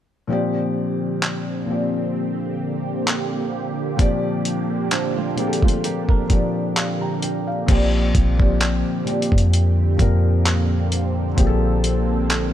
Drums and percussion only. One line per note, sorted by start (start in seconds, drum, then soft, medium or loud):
1.23 clap loud
3.08 clap loud
3.99 kick loud
3.99 closed hi-hat medium
4.45 closed hi-hat medium
4.91 clap loud
4.91 closed hi-hat medium
5.38 closed hi-hat soft
5.53 closed hi-hat medium
5.62 kick medium
5.68 closed hi-hat medium
5.84 closed hi-hat medium
6.09 kick medium
6.30 kick medium
6.30 closed hi-hat medium
6.76 clap loud
6.76 closed hi-hat medium
7.22 closed hi-hat medium
7.68 kick loud
7.68 closed hi-hat medium
7.68 crash medium
8.15 kick medium
8.15 closed hi-hat medium
8.40 kick medium
8.61 clap loud
8.61 closed hi-hat medium
9.07 closed hi-hat soft
9.22 closed hi-hat medium
9.32 kick medium
9.38 closed hi-hat medium
9.53 closed hi-hat medium
9.99 kick medium
9.99 closed hi-hat medium
10.46 clap loud
10.46 closed hi-hat medium
10.92 closed hi-hat medium
11.38 kick loud
11.38 closed hi-hat medium
11.84 closed hi-hat medium
12.30 clap loud
12.30 closed hi-hat medium